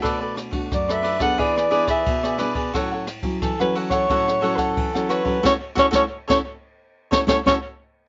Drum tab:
RD |x-xxx-xxx-xxx-xx|x-xxx-xxx-xxx-xx|----------------|
SD |r-r-rr-r-r-r-rr-|r-r-rr-r-r-r-rr-|o-oo-o----ooo---|
BD |o--oo--oo--oo--o|o--oo--oo--oo--o|o-oo-o----ooo---|